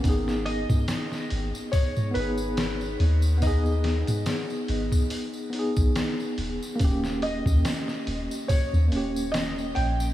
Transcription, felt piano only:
X:1
M:4/4
L:1/8
Q:"Swing 16ths" 1/4=71
K:G#m
V:1 name="Felt piano"
z d3 c B3 | d4 z4 | z d3 c2 d =g |]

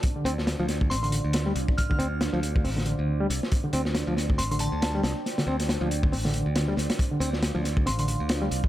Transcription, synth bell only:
X:1
M:4/4
L:1/16
Q:"Swing 16ths" 1/4=138
K:Dm
V:1 name="Synth bell"
z8 c' c' z6 | f'4 z12 | z8 c' c' a4 z2 | z16 |
z8 c' c' z6 |]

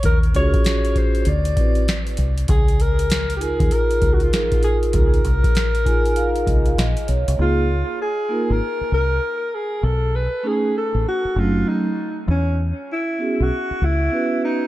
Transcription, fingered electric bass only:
X:1
M:4/4
L:1/16
Q:"Swing 16ths" 1/4=98
K:Db
V:1 name="Fingered electric bass" clef=bass
E,,2 D,, z4 z =D,,2 z4 C,,2 | D,,6- D,, E,, z2 D,,2 z4 | D,,2 C,, z6 z C,,2 B,,, z _C,, =C,, | D,,3 z4 A,,, z2 C,,2 z4 |
_C,,3 z4 =A,,, z2 G,,,2 z4 | =E,,3 z4 =B,,, z2 ^C,,2 z4 |]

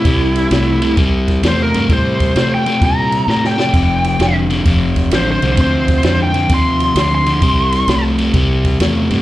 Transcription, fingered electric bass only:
X:1
M:4/4
L:1/8
Q:"Swing" 1/4=130
K:Cmix
V:1 name="Fingered electric bass" clef=bass
C,,2 C,,2 C,,2 E,, G,, | A,,2 C,2 B,,2 A,,2 | F,,,2 F,,,2 F,,,2 A,,, C,, | D,,2 F,,2 _E,,2 D,,2 |
C,,2 C,,2 C,,2 E,, G,, |]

